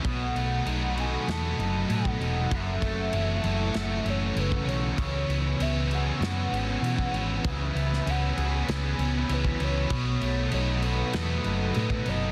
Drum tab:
CC |x-x-x-x-x-x-x-x-|x-x-x-x-x-x-x-x-|x-x-x-x-x-x-x-x-|x-x-x-x-x-x-x-x-|
SD |--------o-------|--------o-------|--------o-------|---o----o-------|
BD |o------------o--|o-o----------o--|o------------o--|o------------o--|

CC |x-x-x-x-x-x-x-x-|
SD |--------o-------|
BD |o------------o--|